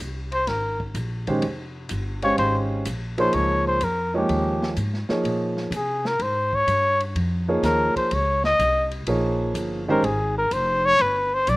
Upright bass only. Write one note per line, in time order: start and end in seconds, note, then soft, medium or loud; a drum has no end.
0.00 0.46 C2 medium
0.47 0.94 G#1 medium
0.94 1.41 A#1 medium
1.43 1.89 F1 medium
1.91 2.37 G1 medium
2.39 2.85 G#1 medium
2.86 3.32 A#1 medium
3.34 3.80 C#2 medium
3.82 4.28 F2 medium
4.29 4.75 D#2 medium
4.77 5.07 G#2 medium
5.09 muted upright bass stroke soft
5.24 5.70 A#2 medium
5.71 6.18 C3 medium
6.19 6.66 G#2 medium
6.67 7.14 G2 medium
7.15 7.62 F2 medium
7.63 7.94 D#2 medium
7.96 muted upright bass stroke soft
8.12 8.58 C#2 medium
8.59 9.06 C2 medium
9.07 9.54 A#1 medium
9.54 10.01 G1 medium
10.03 10.49 G#1 medium
10.51 10.98 F1 medium
11.00 11.46 G1 medium
11.48 11.57 B1 medium